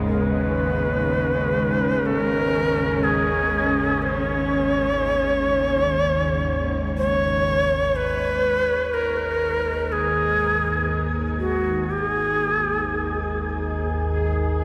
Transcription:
Already playing: G#1 D#2 G#2 C#3 G#3 B3 D#4
0.07 A#4
0.24 B4
0.30 C#4
2.06 A4
2.20 A#4
3.04 G#4
4.03 C5
4.16 C#5
6.98 C#5
7.95 G#1 D#2 G#4 B4
8.94 A#4
9.92 G#4
11.39 F#4
11.91 G#4

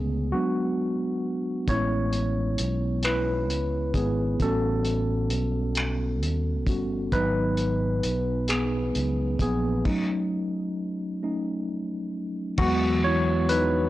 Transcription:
Already playing: C#2 D3 A3 B3 C#4 G#4
0.32 F#3 G#3 B3 D4 F#4
1.68 A1 G#3 B3 C#4 E4 C#5, kick, closed hi-hat
2.13 closed hi-hat
2.58 B1, closed hi-hat
3.03 E4 B4, finger snap, closed hi-hat
3.50 C#2, closed hi-hat
3.94 G#1 B3 G#4, kick, closed hi-hat
4.40 A1 G3 B3 C#4 F#4 A4, kick, closed hi-hat
4.85 closed hi-hat
5.30 B1, closed hi-hat
5.75 finger snap, closed hi-hat
6.23 D#2, closed hi-hat
6.67 G1 G3 B3 C#4 F#4, kick, closed hi-hat
7.12 G#1 F#3 B3 D#4 B4, kick, closed hi-hat
7.57 closed hi-hat
8.03 B1, closed hi-hat
8.48 B3 G#4, finger snap, closed hi-hat
8.95 C#2, closed hi-hat
9.39 A#1 B3 G#4, kick, closed hi-hat
9.85 F#3 A3 C#4 D#4, kick, crash
11.23 A3 C#4 D#4
12.58 E2 E3 F#3 G#3 B3 F#4, kick, crash
13.04 E4 C#5
13.49 D#4 B4, closed hi-hat

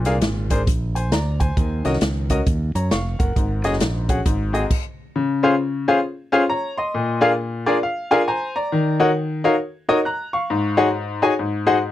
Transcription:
Already playing: A#2
0.05 C2 D4 G#4 A#4 F5, snare, closed hi-hat
0.21 G#1, snare, closed hi-hat
0.50 D4 G#4 A#4 C5, kick, closed hi-hat
0.67 A#1, kick, closed hi-hat
0.95 C5 G#5, closed hi-hat
1.12 D2 D5 A#5, snare, closed hi-hat
1.40 C5 G#5, kick, closed hi-hat
1.57 D#2 D#3, kick, closed hi-hat
1.85 C2 C#4 F#4 A#4 D#5, snare, closed hi-hat
1.93 snare
2.01 C#2, snare, closed hi-hat
2.30 C#4 F#4 A#4 D#5, kick, closed hi-hat
2.46 D#2, kick, closed hi-hat
2.75 F#2 C#5 A#5, closed hi-hat
2.91 F1 F5 C#6, snare, closed hi-hat
3.19 F#1 A#4 F#5, kick, closed hi-hat
3.36 G#1 G#2, kick, closed hi-hat
3.64 F#1 C#4 F#4 G#4 D#5, snare, closed hi-hat
3.73 snare
3.80 A#1, snare, closed hi-hat
4.09 C#4 F#4 G#4 F#5, kick, closed hi-hat
4.26 G#1 G#2, kick, closed hi-hat
4.53 C4 F#4 G#4 D#5, closed hi-hat
4.71 kick, crash
5.16 C#3
5.43 C#4 F4 G#4 C5 F5
5.88 C#4 F4 G#4 C5 F5
6.32 C#4 F4 G#4 C5 F5
6.50 C#5 A#5
6.77 D#5 C6
6.94 A#2
7.21 D4 F4 G#4 A#4 F5
7.66 D4 F4 G#4 A#4 D5
7.83 F5
8.11 D4 F4 G#4 A#4 F5 G#5
8.28 C5 G#5 A#5
8.56 D5 A#5
8.72 D#3
9.00 D#4 F#4 A#4 C#5 F#5
9.44 D#4 F#4 A#4 C#5 F5
9.89 D#4 F#4 A#4 C#5 D#5
10.05 A#5 F#6
10.33 F5 C#6
10.50 G#2
10.77 D#4 F#4 G#4 C#5 F#5
11.22 D#4 F#4 G#4 C#5 G#5
11.39 G#2
11.67 D#4 F#4 G#4 C5 F#5

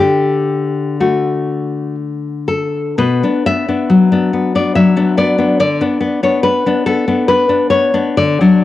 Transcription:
0.00 D3 G4
1.00 A3 F#4
2.48 A4
2.98 B2 B4
3.23 B3 D4
3.46 B3 E5
3.68 B3 D4
3.90 F#3
4.12 B3 D4
4.33 B3
4.55 B3 D4 D5
4.75 F#3 E5
4.96 B3 D4
5.17 B3 D5
5.38 B3 D4
5.60 D3 D5
5.81 B3 D4
6.01 B3
6.23 B3 D4 C#5
6.43 D4 B4
6.66 B3 D4
6.86 B3 A4
7.08 B3 D4
7.28 D4 B4
7.49 B3 D4
7.70 B3 C#5
7.94 B3 D4
8.17 D3 D5
8.41 F#3 D4

